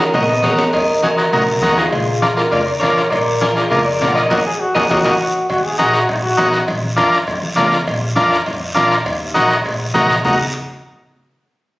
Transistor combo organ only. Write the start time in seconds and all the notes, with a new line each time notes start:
0.14 D#4 F#4 A#4
0.43 D#4 F#4 A#4
1.03 D#4 F#4 G#4
1.17 D#4 F#4 A#4
1.33 D#4 F#4 A#4
1.62 D#4 F#4 A#4
2.22 D4 F4 A#4
2.37 D4 F4 A#4
2.51 D4 F4 A#4
2.81 D4 F4 A#4
3.41 D4 F4 G#4
3.56 D4 F4 A#4
3.71 D4 F4 A#4
4.01 D4 F4 A#4
4.30 A#3 D#4 F#4
4.75 A#3 D#4 F#4
4.90 A#3 D#4 F#4
5.04 A#3 D#4 F#4
5.78 D#4 F#4 A#4
6.37 D#4 F#4 A#4
6.96 D4 F4 A#4
7.56 D4 F4 A#4
8.16 D4 F4 A#4
8.75 D4 F4 A#4
9.34 D#4 F#4 A#4
9.94 D#4 F#4 A#4
10.25 D#4 F#4 A#4